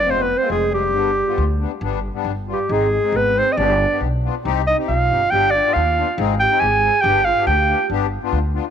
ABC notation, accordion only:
X:1
M:2/4
L:1/16
Q:1/4=138
K:none
V:1 name="Accordion"
[_A,CF]2 z [A,CF] z2 [A,C_A] z | [G,B,D]2 z [G,B,F] z2 [G,B,D] z | [G,B,D]2 z [G,B,D] z2 [G,B,F] z | [_A,C_E]2 z [A,CE] z2 [A,CE] z |
[B,DG]2 z [B,DG] z2 [B,DF] z | [C_EG]2 z [CEG] z2 [CEG] z | [B,DG]2 z [B,DF] z2 [B,DF] z | [C_E_A]2 z [CEG] z2 [CEA] z |
[B,DG]2 z [B,DG] z2 [B,DG] z | [B,DG]2 z [B,DF] z2 [B,DF] z |]